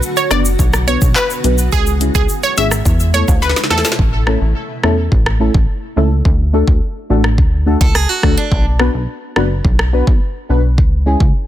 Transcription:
Already playing: ambient pad D3 B3 F#4
0.03 shaker
0.17 synth pluck C#5, shaker
0.30 analog synth bass F#1, synth stab B3 D4 F#4 B4, synth pluck D5, cross-stick, closed hi-hat, shaker
0.45 shaker
0.59 analog synth bass B1, kick, shaker
0.73 cross-stick, shaker
0.87 synth stab B3 D4 F#4 B4, synth pluck C#5, closed hi-hat, shaker
1.01 analog synth bass B1, kick, shaker
1.16 synth pluck B4, clap, shaker
1.30 shaker
1.43 analog synth bass B1, synth stab B3 D4 F#4 B4, closed hi-hat, shaker
1.58 shaker
1.72 analog synth bass C#2, ambient pad E4, synth pluck G#4, kick, shaker
1.86 shaker
2.00 synth stab G#3 C#4 E4 G#4, closed hi-hat, shaker
2.15 analog synth bass C#2, synth pluck G#4, kick, shaker
2.29 shaker
2.43 synth pluck C#5, shaker
2.57 analog synth bass G#1, synth stab G#3 C#4 E4 G#4, synth pluck E5, closed hi-hat, shaker
2.71 cross-stick, shaker
2.85 analog synth bass E2, kick, shaker
3.00 shaker
3.13 synth stab A3 B3 E4 A4, synth pluck C#5, closed hi-hat, shaker
3.28 analog synth bass D2, kick, high timbale, shaker
3.42 synth pluck B4, snare, shaker
3.49 snare
3.56 snare, shaker
3.64 snare
3.70 analog synth bass E2, synth stab A3 B3 E4 A4, synth pluck A4, snare, closed hi-hat, high timbale, shaker
3.78 snare
3.85 snare, shaker
3.92 snare
3.99 analog synth bass A1, kick
4.27 synth stab A3 C#4 E4 A4, cross-stick
4.41 analog synth bass A1
4.83 analog synth bass E2, synth stab A3 C#4 E4 A4, cross-stick
5.12 analog synth bass A1, kick
5.26 cross-stick
5.40 synth stab A3 C#4 E4 A4
5.54 analog synth bass A1, kick
5.96 analog synth bass C#2, synth stab A3 C#4 E4 A4
6.25 analog synth bass D2, kick
6.53 synth stab A3 D4 F#4 A4
6.68 analog synth bass D2, kick
7.09 analog synth bass A1, synth stab A3 D4 F#4 A4
7.24 cross-stick
7.38 analog synth bass D2, kick
7.66 synth stab A3 D4 F#4 A4
7.81 analog synth bass C#2, steel-string acoustic guitar A4, kick
7.95 steel-string acoustic guitar G#4, cross-stick
8.09 steel-string acoustic guitar F#4
8.23 analog synth bass D2, synth stab A3 D4 F#4 A4, kick, cross-stick
8.37 steel-string acoustic guitar D4
8.52 analog synth bass B1, kick
8.79 synth stab B3 D4 F#4 B4, cross-stick
8.94 analog synth bass B1
9.36 analog synth bass F#1, synth stab B3 D4 F#4 B4, cross-stick
9.65 analog synth bass B1, kick
9.79 cross-stick
9.93 synth stab B3 D4 F#4 B4
10.07 analog synth bass B1, kick
10.49 analog synth bass B1, synth stab B3 D4 F#4 B4
10.78 analog synth bass C#2, kick
11.06 synth stab G#3 C#4 E4 G#4
11.20 analog synth bass C#2, kick

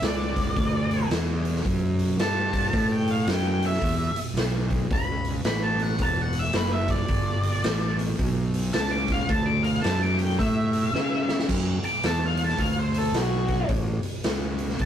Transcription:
0.02 fingered electric bass C#2, lead electric guitar D5, snare, open hi-hat
0.36 kick, snare, open hi-hat
0.57 fingered electric bass D2, kick, open hi-hat
0.91 open hi-hat
1.10 fingered electric bass E2, snare, open hi-hat
1.45 open hi-hat
1.56 snare
1.65 fingered electric bass F#2, kick, open hi-hat
1.99 open hi-hat
2.17 fingered electric bass G2, lead electric guitar A5, snare, open hi-hat
2.53 kick, snare, open hi-hat
2.73 fingered electric bass A2, kick, open hi-hat
2.92 lead electric guitar G5
3.08 lead electric guitar F5, open hi-hat
3.27 fingered electric bass F#2, lead electric guitar G5, snare, open hi-hat
3.48 lead electric guitar G5
3.63 lead electric guitar E5, open hi-hat
3.73 snare
3.82 fingered electric bass E2, kick, open hi-hat
4.15 muted fingered electric bass stroke, open hi-hat
4.34 fingered electric bass B1, snare, open hi-hat
4.71 kick, open hi-hat
4.91 fingered electric bass C#2, lead electric guitar B5, kick, open hi-hat
5.25 open hi-hat
5.44 fingered electric bass A1, lead electric guitar B5, snare, open hi-hat
5.63 lead electric guitar A5
5.79 lead electric guitar F#5, open hi-hat
5.98 fingered electric bass E1, lead electric guitar A5, kick, open hi-hat
6.22 lead electric guitar F#5
6.33 open hi-hat
6.39 lead electric guitar E5
6.53 fingered electric bass F#1, lead electric guitar B4, snare, open hi-hat
6.73 lead electric guitar E5
6.88 lead electric guitar D5, kick, snare, open hi-hat
7.08 fingered electric bass G1, kick, open hi-hat
7.43 open hi-hat
7.64 fingered electric bass A1, snare, open hi-hat
7.99 open hi-hat
8.19 fingered electric bass B1, kick, open hi-hat
8.54 open hi-hat
8.73 fingered electric bass C#2, lead electric guitar A5, snare, open hi-hat
8.91 lead electric guitar D6
9.08 kick, snare, open hi-hat
9.12 lead electric guitar F5
9.28 fingered electric bass D2, lead electric guitar A5, kick, open hi-hat
9.46 lead electric guitar D6
9.63 lead electric guitar F5, open hi-hat
9.82 fingered electric bass F#2, lead electric guitar A5, snare, open hi-hat
10.03 lead electric guitar D6
10.17 lead electric guitar G5, open hi-hat
10.39 fingered electric bass A2, lead electric guitar E5, kick, open hi-hat
10.73 open hi-hat
10.93 fingered electric bass C#3, snare
11.29 snare
11.39 snare
11.48 fingered electric bass F#2, kick, crash
11.83 lead electric guitar D6, muted fingered electric bass stroke, open hi-hat
12.03 fingered electric bass E2, lead electric guitar A5, snare, open hi-hat
12.26 lead electric guitar F5
12.37 open hi-hat
12.45 lead electric guitar A5
12.49 snare
12.58 fingered electric bass D2, lead electric guitar F5, kick, open hi-hat
12.79 lead electric guitar C5
12.94 lead electric guitar A4, open hi-hat
13.13 fingered electric bass B1, snare, open hi-hat
13.17 lead electric guitar F#4
13.48 kick, snare, open hi-hat
13.69 fingered electric bass A1, kick, open hi-hat
14.03 muted fingered electric bass stroke, open hi-hat
14.24 fingered electric bass C#2, snare, open hi-hat
14.59 open hi-hat
14.69 snare
14.79 fingered electric bass B1, lead electric guitar A5, kick, open hi-hat

